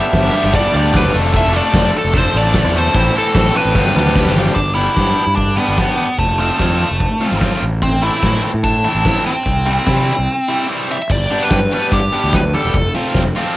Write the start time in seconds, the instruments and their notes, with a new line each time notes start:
Already playing: overdriven electric guitar G2 D3 G3 B3 D4 G4, lead electric guitar E5
0.12 fingered electric bass G1, overdriven electric guitar G2 D3 G3 B3 D4 G4, kick, snare, tambourine
0.32 overdriven electric guitar G2 D3 G3 B3 D4 G4, open hi-hat
0.43 fingered electric bass G1, snare
0.52 overdriven electric guitar G2 D3 G3 B3 D4 G4, lead electric guitar D5, kick
0.72 fingered electric bass D2, overdriven electric guitar G2 D3 G3 B3 D4 G4, open hi-hat, tambourine
0.77 lead electric guitar D5
0.92 overdriven electric guitar G2 D3 G3 B3 D4 G4, kick, snare, tambourine
0.96 lead electric guitar B4
1.04 fingered electric bass G1
1.11 fingered electric bass F1, overdriven electric guitar F3 A3 D4 A4, open hi-hat, tambourine
1.25 snare
1.32 overdriven electric guitar F3 A3 D4 A4, kick, tambourine
1.37 lead electric guitar E5
1.52 overdriven electric guitar F3 A3 D4 A4, open hi-hat, tambourine
1.57 lead electric guitar D5
1.72 fingered electric bass F1, overdriven electric guitar F3 A3 D4 A4, kick, snare, tambourine
1.92 overdriven electric guitar F3 A3 D4 A4, open hi-hat
1.97 lead electric guitar A4
2.04 fingered electric bass F1
2.13 overdriven electric guitar F3 A3 D4 A4, kick
2.18 lead electric guitar C5
2.33 fingered electric bass A1, overdriven electric guitar F3 A3 D4 A4, open hi-hat, tambourine
2.37 lead electric guitar D5
2.54 overdriven electric guitar F3 A3 D4 A4, kick, snare, tambourine
2.64 fingered electric bass E2
2.74 overdriven electric guitar F3 A3 D4 A4, lead electric guitar C5, open hi-hat
2.86 snare
2.94 fingered electric bass A1, overdriven electric guitar A2 E3 C4 E4 A4, kick, tambourine
3.14 overdriven electric guitar A2 E3 C4 E4 A4, lead electric guitar A4, open hi-hat, tambourine
3.34 fingered electric bass A1, overdriven electric guitar A2 E3 C4 E4 A4, kick, snare, tambourine
3.53 overdriven electric guitar A2 E3 C4 E4 A4, lead electric guitar B4, open hi-hat
3.65 fingered electric bass A1
3.73 fingered electric bass G1, overdriven electric guitar G2 D3 G3 B3 D4 G4, kick, snare
3.87 snare
3.94 fingered electric bass D2, overdriven electric guitar G2 D3 G3 B3 D4 G4, snare, tambourine
4.07 snare
4.14 overdriven electric guitar G2 D3 G3 B3 D4 G4, kick, snare, tambourine
4.25 fingered electric bass G1, snare
4.35 overdriven electric guitar G2 D3 G3 B3 D4 G4, snare, tambourine
4.47 snare
4.55 fingered electric bass G1, lead electric guitar D4, kick, closed hi-hat
4.75 overdriven electric guitar G3 B3 D4 G4, lead electric guitar E4, closed hi-hat
4.96 fingered electric bass G2, overdriven electric guitar G3 B3 D4 G4, kick, snare, closed hi-hat
5.17 closed hi-hat
5.26 fingered electric bass G2
5.36 lead electric guitar D4, kick, closed hi-hat
5.56 overdriven electric guitar G3 B3 D4 G4, lead electric guitar B3, closed hi-hat
5.68 fingered electric bass G1
5.78 overdriven electric guitar G3 B3 D4 G4, kick, snare, closed hi-hat
5.98 closed hi-hat
6.18 fingered electric bass F1, lead electric guitar A3, kick, closed hi-hat
6.39 overdriven electric guitar F3 A3 C4 F4, lead electric guitar A3, closed hi-hat
6.58 fingered electric bass F2, overdriven electric guitar F3 A3 C4 F4, lead electric guitar A3, kick, snare, closed hi-hat
6.81 closed hi-hat
6.91 fingered electric bass F1
7.00 kick, closed hi-hat
7.21 overdriven electric guitar F3 A3 C4 F4, closed hi-hat
7.32 fingered electric bass G#1
7.41 overdriven electric guitar F3 A3 C4 F4, kick, snare, closed hi-hat
7.62 fingered electric bass A1, closed hi-hat
7.82 lead electric guitar C4, kick, closed hi-hat
8.02 overdriven electric guitar E3 A3 C4 E4, lead electric guitar E4, closed hi-hat
8.22 fingered electric bass A2, overdriven electric guitar E3 A3 C4 E4, kick, snare, closed hi-hat
8.43 closed hi-hat
8.54 fingered electric bass A2
8.64 lead electric guitar D4, kick, closed hi-hat
8.84 overdriven electric guitar E3 A3 C4 E4, closed hi-hat
8.95 fingered electric bass A1
9.05 overdriven electric guitar E3 A3 C4 E4, kick, snare, closed hi-hat
9.25 lead electric guitar C4, closed hi-hat
9.46 fingered electric bass C2, kick, closed hi-hat
9.66 overdriven electric guitar E3 G3 C4 E4, closed hi-hat
9.86 fingered electric bass C3, overdriven electric guitar E3 G3 C4 E4, kick, snare, closed hi-hat
10.07 closed hi-hat
10.19 fingered electric bass C2
10.49 overdriven electric guitar E3 G3 C4 E4
10.69 overdriven electric guitar E3 G3 C4 E4
10.91 lead electric guitar E5
11.02 lead electric guitar E5
11.10 fingered electric bass G1, lead electric guitar D5, kick, crash, tambourine
11.21 tambourine
11.30 overdriven electric guitar G3 B3 D4 G4, closed hi-hat
11.41 lead electric guitar B4, tambourine
11.50 fingered electric bass G2, lead electric guitar B4, kick, snare, closed hi-hat, tambourine
11.71 overdriven electric guitar G3 B3 D4 G4, closed hi-hat, tambourine
11.91 fingered electric bass G2, lead electric guitar G4, kick, closed hi-hat
12.12 overdriven electric guitar G3 B3 D4 G4, closed hi-hat, tambourine
12.24 fingered electric bass D2
12.33 lead electric guitar B4, kick, snare, closed hi-hat, tambourine
12.54 overdriven electric guitar G3 B3 D4 G4, lead electric guitar A4, closed hi-hat, tambourine
12.65 fingered electric bass E1
12.74 fingered electric bass F1, kick, closed hi-hat, tambourine
12.86 tambourine
12.94 overdriven electric guitar F3 A3 C4 F4, closed hi-hat
13.05 tambourine
13.14 fingered electric bass F1, kick, snare, closed hi-hat, tambourine
13.35 overdriven electric guitar F3 A3 C4 F4, closed hi-hat, tambourine